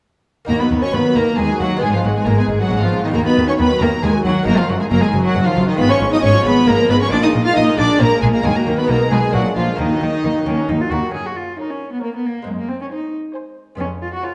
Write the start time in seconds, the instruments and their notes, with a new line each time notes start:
0.45 double bass section D#2, lute A#3 D#4 F#4, violin section A#5
0.49 cello section D#2, lute D#2, viola section D#3, cello A#3, violin section A#4
0.60 viola section F#3, cello B3, violin section B4 B5
0.71 double bass section D#2, lute D#2, cello section D#2, viola section D#3
0.82 viola section F#3, cello C#4, violin section C#5 C#6
0.93 double bass section D#2, lute D#2, cello section D#2, viola section D#3, cello B3, violin section B4 B5
1.05 viola section F#3
1.15 double bass section D#2, cello section D#2, lute D#2, viola section D#3, cello A#3, violin section A#4 A#5
1.27 viola section F#3
1.37 double bass section D#2, cello section D#2, lute D#2, viola section D#3, cello G#3, violin section G#4 G#5
1.50 viola section F#3
1.59 double bass section D#2, lute D#2, cello section D#2, viola section D#3, cello F#3, violin section F#4 F#5
1.72 viola section F#3
1.76 lute G#3 B3 D#4
1.81 double bass section G#1, lute G#2 G#4, cello section G#2, cello G#3, viola section G#3, violin section G#4 G#5
1.93 cello F3, viola section B3, violin section F4 F5
2.04 double bass section G#1, lute G#2, cello section G#2, cello F#3, viola section G#3, violin section F#4 F#5
2.16 cello G#3, viola section B3, violin section G#4 G#5
2.26 double bass section G#1, lute G#2, cello section G#2, viola section G#3, cello A#3, violin section A#4 A#5
2.38 cello G#3, viola section B3, violin section G#4 G#5
2.49 double bass section G#1, lute G#2, cello section G#2, viola section G#3
2.60 cello F#3, viola section B3, violin section F#4 F#5
2.70 double bass section G#1, lute G#2, cello section G#2, viola section G#3
2.82 cello F3, viola section B3, violin section F4 F5
2.92 double bass section G#1, lute G#2, cello section G#2, viola section G#3
3.04 cello D#3, viola section B3, violin section D#4 D#5
3.10 lute A#3 D#4 F#4
3.14 lute D#2, double bass section D#2, cello section D#2, viola section D#3, cello A#3, violin section A#4 A#5
3.26 viola section F#3, cello B3, violin section B4 B5
3.37 double bass section D#2, cello section D#2, lute D#2, viola section D#3
3.48 viola section F#3, cello C#4, violin section C#5 C#6
3.58 lute D#2, double bass section D#2, cello section D#2, viola section D#3, cello B3, violin section B4 B5
3.71 viola section F#3
3.80 double bass section D#2, cello section D#2, lute D#2, viola section D#3, cello A#3, violin section A#4 A#5
3.93 viola section F#3
4.02 double bass section D#2, cello section D#2, lute D#2, viola section D#3, cello G#3, violin section G#4 G#5
4.14 viola section F#3
4.25 double bass section D#2, lute D#2, cello section D#2, viola section D#3, cello F#3, violin section F#4 F#5
4.36 viola section F#3
4.43 lute A#3 D#4 F#4, violin section A#5
4.47 double bass section F#1, lute F#2, cello section F#2, viola section F#3, cello A#3, violin section A#4
4.58 viola section D#3, cello F3, violin section F4 F5
4.68 double bass section F#1, lute F#2, cello section F#2, cello F#3, viola section F#3, violin section F#4 F#5
4.80 viola section D#3, cello G#3, violin section G#4 G#5
4.90 double bass section F#1, lute F#2, cello section F#2, viola section F#3, cello A#3, violin section A#4 A#5
5.01 viola section D#3, cello G#3, violin section G#4 G#5
5.13 double bass section F#1, lute F#2, cello section F#2, viola section F#3
5.23 viola section D#3, cello F#3, violin section F#4 F#5
5.35 double bass section F#1, lute F#2, cello section F#2, viola section F#3
5.45 viola section D#3, cello F3, violin section F4 F5
5.57 double bass section F#1, lute F#2, cello section F#2, viola section F#3
5.67 cello D#3, viola section D#3, violin section D#4 D#5
5.75 lute G#3 B3 F4
5.79 double bass section G#1, lute G#2, cello section G#2, viola section G#3, cello B3, violin section B4 B5
5.89 viola section F3, cello C#4, violin section C#5 C#6
6.01 double bass section G#1, lute G#2, cello section G#2, viola section G#3
6.12 viola section F3, cello D#4, violin section D#5 D#6
6.23 double bass section G#1, lute G#2, cello section G#2, viola section G#3, cello C#4, violin section C#5 C#6
6.35 viola section F3
6.45 double bass section G#1, lute G#2, cello section G#2, viola section G#3, cello B3, violin section B4 B5
6.57 viola section F3
6.67 double bass section G#1, lute G#2, cello section G#2, viola section G#3, cello A#3, violin section A#4 A#5
6.79 viola section F3
6.89 double bass section G#1, lute G#2, cello section G#2, viola section G#3, cello B3, violin section B4 B5
7.01 viola section F3, cello C#4, violin section C#5 C#6
7.07 lute G#3 A#3 F4
7.11 double bass section A#1, lute A#2, cello section A#2, viola section A#3, cello D4, violin section D5 D6
7.23 viola section G#3, cello D#4, violin section D#5 D#6
7.34 double bass section A#1, lute A#2, cello section A#2, viola section A#3
7.45 viola section G#3, cello F4, violin section F5 F6
7.56 double bass section A#1, lute A#2, cello section A#2, viola section A#3, cello D#4, violin section D#5 D#6
7.67 viola section G#3
7.78 double bass section A#1, lute A#2, cello section A#2, viola section A#3, cello D4, violin section D5 D6
7.89 viola section G#3
8.00 double bass section A#1, lute A#2, cello section A#2, cello A#3, viola section A#3, violin section A#4 A#5
8.12 viola section G#3
8.22 double bass section A#1, lute A#2, cello section A#2, cello G#3, viola section A#3, violin section G#4 G#5
8.34 viola section G#3, cello A#3, violin section A#4 A#5
8.41 double bass section D#2, lute D#3 A#3 D#4, cello section D#3, cello G#3, violin section G#4 G#5
8.45 viola section A#3
8.56 viola section F#3, cello A#3, violin section A#4 A#5
8.66 double bass section D#2, lute D#3, cello section D#3, viola section A#3
8.77 viola section F#3, cello B3, violin section B4 B5
8.84 lute G#3 B3 D#4, violin section A#4
8.89 double bass section B1, lute B2, cello section B2, cello A#3, viola section B3, violin section A#5
9.00 viola section G#3
9.11 double bass section B1, lute B2, cello section B2, cello G#3, viola section B3, violin section G#4 G#5
9.22 viola section G#3
9.29 lute G#3 A#3 D4, violin section F#4
9.34 double bass section A#1, lute A#2, cello section A#2, cello F#3, viola section A#3, violin section F#5
9.45 viola section G#3
9.56 double bass section A#1, lute A#2, cello section A#2, cello F3, viola section A#3, violin section F4 F5
9.68 viola section G#3
9.75 double bass section D#2, lute D#3 A#3 D#4, cello D#3, cello section D#3, viola section A#3, violin section D#4 D#5
9.90 viola section F#3
10.01 double bass section D#2, lute D#3, cello section D#3, viola section A#3
10.13 viola section F#3
10.23 double bass section D#2, lute D#3, cello section D#3, viola section A#3
10.36 viola section F#3
10.46 double bass section D#2, lute D#3, cello section D#3, viola section A#3, cello C#4
10.58 viola section F#3
10.69 double bass section D#2, lute D#3, cello section D#3, viola section A#3, cello D#4
10.81 viola section F#3, cello F4
10.91 double bass section D#2, cello section D#3, lute D#3, viola section A#3, cello F#4
11.04 viola section F#3
11.09 lute A#3 C#4
11.14 cello section F#2, lute F#2, cello G#4
11.26 cello F#4
11.36 cello F4
11.59 cello D#4, viola section A#4, violin section C#5
11.70 cello C#4
11.92 cello B3
12.03 cello A#3, viola section A#4, violin section C#5
12.15 cello B3
12.26 cello A#3
12.42 lute G#3 C4
12.47 cello section F#2, lute F#2, cello G#3
12.59 cello A#3
12.69 cello C4
12.82 cello C#4
12.91 cello D#4, viola section C5, violin section C5 G#5
13.35 viola section C5, violin section C5 G#5
13.75 lute G#3 B3 C#4
13.79 cello section F2, lute F2, cello C#4
14.02 cello F4
14.14 cello F#4
14.24 cello F4, viola section B4, violin section C#5 G#5